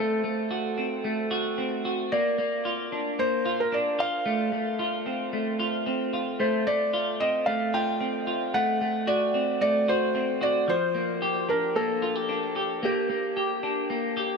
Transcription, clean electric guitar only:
0.00 0.23 A3 medium
0.00 0.54 C4 medium
0.24 1.03 A3 medium
0.51 1.30 F#4 medium
0.78 1.57 C4 medium
1.04 2.11 A3 medium
1.31 1.84 F#4 medium
1.58 2.17 C4 medium
1.85 2.17 F#4 medium
2.12 2.37 A#3 medium
2.38 3.18 A#3 medium
2.65 3.45 F4 medium
2.92 3.72 D4 medium
3.19 4.25 A#3 medium
3.45 3.98 F4 medium
3.72 5.06 D4 medium
3.99 4.79 F4 medium
4.26 4.52 A3 medium
4.52 5.32 A3 medium
4.79 5.59 F4 medium
5.06 5.86 C4 medium
5.33 6.39 A3 medium
5.59 6.13 F4 medium
5.86 7.20 C4 medium
6.13 6.93 F4 medium
6.40 6.66 A3 medium
6.67 7.47 A3 medium
6.93 7.73 F4 medium
7.20 8.00 C4 medium
7.47 8.54 A3 medium
7.74 8.26 F4 medium
8.01 9.10 C4 medium
8.27 8.59 F4 medium
8.54 8.80 A3 medium
8.81 9.60 A3 medium
9.07 9.87 F#4 medium
9.34 10.14 C4 medium
9.61 10.74 A3 medium
9.88 10.40 F#4 medium
10.15 10.74 C4 medium
10.41 10.74 F#4 medium
10.68 12.82 F3 medium
10.95 11.75 A#3 medium
11.22 12.02 G4 medium
11.49 12.29 D4 medium
11.76 12.82 A#3 medium
12.02 12.16 F4 medium
12.16 12.55 G4 medium
12.29 13.63 D4 medium
12.56 13.36 G4 medium
12.83 13.09 A#3 medium
13.09 13.90 A#3 medium
13.37 14.16 G4 medium
13.63 14.37 D4 medium
13.90 14.37 A#3 medium
14.17 14.37 G4 medium

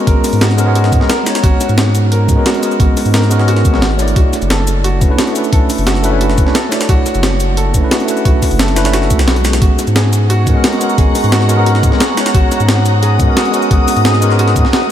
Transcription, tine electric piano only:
0.00 0.55 G#3 medium
0.00 0.56 B3 medium
0.00 0.56 C#4 medium
0.00 0.57 F#4 medium
0.00 0.58 A#4 loud
0.57 0.64 G#3 loud
0.57 0.64 B3 medium
0.57 0.65 C#4 medium
0.57 0.65 F#4 medium
0.57 0.66 A#4 loud
0.65 0.99 G#3 medium
0.65 0.99 B3 medium
0.65 0.99 C#4 medium
0.65 1.00 F#4 medium
0.65 1.00 A#4 loud
1.00 1.08 G#3 medium
1.00 1.09 B3 medium
1.00 1.09 C#4 medium
1.00 1.09 F#4 medium
1.00 1.10 A#4 loud
1.24 2.25 G#3 medium
1.24 2.26 B3 medium
1.24 2.27 C#4 medium
1.28 2.28 F#4 medium
1.28 2.28 C#5 medium
2.27 2.35 G#3 medium
2.27 2.35 B3 medium
2.27 2.35 C#4 medium
2.27 2.36 F#4 medium
2.27 2.36 A#4 medium
2.36 2.59 G#3 medium
2.36 2.60 B3 medium
2.36 2.61 C#4 medium
2.36 2.61 F#4 medium
2.36 2.62 A#4 medium
2.60 3.27 G#3 medium
2.60 3.28 B3 medium
2.60 3.29 C#4 medium
2.64 3.30 F#4 medium
2.64 3.30 A#4 medium
3.30 3.37 G#3 loud
3.30 3.37 B3 medium
3.30 3.38 C#4 medium
3.30 3.38 F#4 medium
3.30 3.38 A#4 loud
3.38 3.71 G#3 medium
3.38 3.72 B3 medium
3.38 3.72 C#4 medium
3.38 3.72 F#4 medium
3.38 3.73 A#4 loud
3.72 3.81 G#3 medium
3.72 3.81 B3 medium
3.72 3.82 C#4 medium
3.72 3.82 F#4 medium
3.72 3.82 A#4 medium
3.96 4.98 A3 medium
3.96 4.99 D4 medium
3.96 4.99 C#5 medium
4.01 5.00 E4 medium
4.01 5.01 D5 loud
5.00 5.07 A3 medium
5.00 5.08 C#4 medium
5.00 5.08 D4 medium
5.00 5.08 E4 medium
5.00 5.09 B4 medium
5.09 5.31 A3 medium
5.09 5.33 C#4 medium
5.09 5.34 D4 medium
5.09 5.34 E4 medium
5.09 5.34 B4 medium
5.33 6.00 A3 medium
5.33 6.01 C#4 medium
5.33 6.02 D4 medium
5.37 6.03 E4 medium
5.37 6.03 B4 medium
6.02 6.10 A3 loud
6.02 6.10 C#4 medium
6.02 6.10 D4 medium
6.02 6.11 E4 medium
6.02 6.11 B4 loud
6.11 6.44 A3 loud
6.11 6.44 C#4 medium
6.11 6.45 D4 medium
6.11 6.45 E4 medium
6.11 6.45 B4 loud
6.45 6.54 A3 medium
6.45 6.54 C#4 medium
6.45 6.54 D4 medium
6.45 6.55 E4 medium
6.45 6.55 B4 loud
6.69 7.71 A3 medium
6.69 7.72 D4 medium
6.69 7.72 C#5 medium
6.74 7.73 E4 medium
6.74 7.74 D5 loud
7.73 7.80 A3 medium
7.73 7.80 C#4 medium
7.73 7.81 D4 medium
7.73 7.81 E4 medium
7.73 7.82 B4 medium
7.81 8.04 A3 medium
7.81 8.06 C#4 medium
7.81 8.06 D4 medium
7.81 8.07 E4 medium
7.81 8.07 B4 medium
8.05 8.73 A3 medium
8.05 8.74 C#4 medium
8.05 8.75 D4 medium
8.10 8.75 E4 medium
8.10 8.76 B4 loud
8.75 8.82 A3 loud
8.75 8.83 C#4 medium
8.75 8.83 D4 medium
8.75 8.83 E4 medium
8.75 8.84 B4 loud
8.84 9.17 A3 medium
8.84 9.17 C#4 medium
8.84 9.18 D4 medium
8.84 9.18 E4 medium
8.84 9.18 B4 loud
9.42 10.43 G#3 medium
9.42 10.44 B3 medium
9.42 10.45 C#4 medium
9.46 10.46 F#4 medium
9.46 10.46 G#4 medium
10.45 10.53 G#3 medium
10.45 10.53 B3 medium
10.45 10.53 C#4 medium
10.45 10.54 F#4 medium
10.45 10.54 A#4 medium
10.54 10.77 G#3 medium
10.54 10.78 B3 medium
10.54 10.79 C#4 medium
10.54 10.79 F#4 medium
10.54 10.80 A#4 medium
10.78 11.46 G#3 medium
10.78 11.46 B3 medium
10.78 11.47 C#4 medium
10.83 11.48 F#4 medium
10.83 11.49 A#4 medium
11.48 11.55 G#3 loud
11.48 11.55 B3 medium
11.48 11.56 C#4 medium
11.48 11.56 F#4 medium
11.48 11.57 A#4 loud
11.56 11.89 G#3 medium
11.56 11.90 B3 medium
11.56 11.90 C#4 medium
11.56 11.91 F#4 medium
11.56 11.91 A#4 loud
11.90 11.99 G#3 medium
11.90 12.00 B3 medium
11.90 12.00 C#4 medium
11.90 12.00 F#4 medium
11.90 12.01 A#4 loud
12.14 13.16 G#3 medium
12.14 13.17 B3 medium
12.14 13.18 C#4 medium
12.19 13.19 F#4 medium
12.19 13.19 C#5 loud
13.18 13.26 G#3 medium
13.18 13.26 B3 medium
13.18 13.26 C#4 medium
13.18 13.27 F#4 medium
13.18 13.27 A#4 medium
13.27 13.50 G#3 medium
13.27 13.51 B3 medium
13.27 13.52 C#4 medium
13.27 13.52 F#4 medium
13.27 13.53 A#4 medium
13.51 14.18 G#3 medium
13.51 14.19 B3 medium
13.51 14.20 C#4 medium
13.55 14.21 F#4 medium
13.55 14.21 A#4 loud
14.21 14.28 G#3 loud
14.21 14.28 B3 medium
14.21 14.29 C#4 medium
14.21 14.29 F#4 medium
14.21 14.29 A#4 loud
14.29 14.62 G#3 loud
14.29 14.63 B3 medium
14.29 14.63 C#4 medium
14.29 14.63 F#4 medium
14.29 14.64 A#4 loud
14.87 14.91 A3 medium

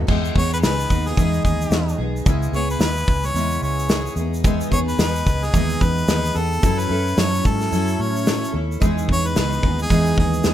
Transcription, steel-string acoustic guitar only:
0.07 0.35 E3 medium
0.07 0.35 G#3 medium
0.07 0.35 B3 medium
0.07 0.35 D#4 medium
0.07 0.34 G#4 medium
0.35 0.62 B3 soft
0.35 0.62 D#4 medium
0.35 0.62 G#4 medium
0.62 0.90 G#3 medium
0.62 0.90 B3 medium
0.62 0.89 D#4 medium
0.62 0.88 G#4 medium
0.89 1.16 B3 soft
0.89 1.16 D#4 medium
0.89 1.17 G#4 medium
1.16 1.76 E3 medium
1.16 1.71 G#3 medium
1.16 1.72 B3 medium
1.16 1.72 D#4 medium
1.16 1.73 G#4 medium
1.71 1.99 G#3 medium
1.71 1.99 B3 medium
1.71 1.98 D#4 medium
1.71 1.97 G#4 medium
1.98 2.25 B3 soft
1.98 2.26 D#4 medium
1.98 2.26 G#4 medium
2.26 2.53 C#3 medium
2.26 2.54 G#3 medium
2.26 2.54 B3 medium
2.26 2.53 E4 medium
2.26 2.52 G#4 medium
2.53 2.80 B3 medium
2.53 2.81 E4 medium
2.53 2.81 G#4 medium
2.81 3.35 G#3 medium
2.81 3.35 B3 medium
2.81 3.36 E4 medium
2.81 3.36 G#4 medium
3.35 3.90 C#3 medium
3.35 3.89 G#3 medium
3.35 3.89 B3 medium
3.35 3.90 E4 medium
3.35 3.91 G#4 medium
3.89 4.17 G#3 medium
3.89 4.17 B3 medium
3.89 4.17 E4 medium
3.89 4.15 G#4 medium
4.16 4.43 B3 soft
4.16 4.44 D#4 soft
4.16 4.44 G#4 medium
4.44 4.71 E3 medium
4.44 4.72 G#3 medium
4.44 4.72 B3 medium
4.44 4.70 D#4 loud
4.44 4.70 G#4 loud
4.71 4.98 B3 soft
4.71 4.99 D#4 medium
4.71 4.99 G#4 medium
4.98 5.53 G#3 medium
4.98 5.53 B3 medium
4.98 5.53 D#4 medium
4.98 5.54 G#4 medium
5.53 6.12 E3 medium
5.53 6.06 G#3 medium
5.53 6.07 B3 medium
5.53 6.08 D#4 medium
5.53 6.08 G#4 medium
6.08 6.35 G#3 medium
6.08 6.35 B3 medium
6.08 6.34 D#4 medium
6.08 6.33 G#4 medium
6.35 6.62 B3 soft
6.35 6.62 D#4 medium
6.35 6.62 G#4 medium
6.62 6.90 F#3 medium
6.62 6.90 C#4 medium
6.62 6.89 E4 medium
6.62 6.88 A4 medium
6.89 7.17 C#4 soft
6.89 7.17 E4 medium
6.89 7.17 A4 medium
7.17 7.70 F#3 medium
7.17 7.70 C#4 medium
7.17 7.72 E4 medium
7.17 7.71 A4 medium
7.71 8.25 F#3 medium
7.71 8.26 C#4 medium
7.71 8.27 E4 medium
7.71 8.26 A4 medium
8.26 8.54 F#3 medium
8.26 8.53 C#4 medium
8.26 8.52 E4 medium
8.26 8.51 A4 medium
8.52 8.81 C#4 soft
8.52 8.81 E4 soft
8.52 8.81 A4 soft
8.80 9.08 E3 medium
8.80 9.09 G#3 medium
8.80 9.09 B3 medium
8.80 9.08 D#4 loud
8.80 9.07 G#4 medium
9.08 9.34 B3 soft
9.08 9.35 D#4 medium
9.08 9.36 G#4 medium
9.35 9.63 G#3 medium
9.35 9.63 B3 medium
9.35 9.62 D#4 medium
9.35 9.61 G#4 medium
9.62 9.89 B3 soft
9.62 9.90 D#4 medium
9.62 9.90 G#4 medium
9.90 10.49 E3 medium
9.90 10.44 G#3 medium
9.90 10.45 B3 medium
9.90 10.45 D#4 medium
9.90 10.46 G#4 medium
10.44 10.54 G#3 medium
10.44 10.54 B3 medium
10.44 10.54 D#4 medium
10.44 10.54 G#4 medium

